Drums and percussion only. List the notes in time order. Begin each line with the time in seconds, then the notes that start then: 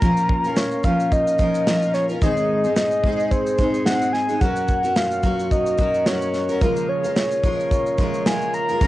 0.02 kick, shaker
0.17 shaker
0.29 kick
0.44 shaker
0.56 snare, shaker
0.71 shaker
0.84 kick, shaker
1.00 shaker
1.12 kick, shaker
1.27 shaker
1.38 kick, shaker
1.55 shaker
1.67 snare, shaker
1.82 shaker
1.94 snare, shaker
2.09 shaker
2.22 kick, shaker
2.37 shaker
2.64 shaker
2.76 snare, shaker
2.91 shaker
3.04 kick
3.20 shaker
3.31 kick, shaker
3.47 shaker
3.58 kick, shaker
3.74 shaker
3.86 snare, shaker
4.02 shaker
4.14 snare
4.29 shaker
4.41 kick, shaker
4.56 shaker
4.68 kick, shaker
4.85 shaker
4.96 snare, shaker
5.12 shaker
5.23 kick, shaker
5.40 shaker
5.51 kick, shaker
5.66 shaker
5.78 kick, shaker
5.94 shaker
6.06 snare, shaker
6.21 shaker
6.33 snare, shaker
6.49 shaker
6.61 kick, shaker
6.76 shaker
7.04 shaker
7.16 snare, shaker
7.31 shaker
7.44 kick, shaker
7.60 shaker
7.71 kick, shaker
7.86 shaker
7.98 kick, shaker
8.14 shaker
8.26 snare, shaker
8.41 shaker
8.54 shaker
8.69 shaker
8.81 kick, shaker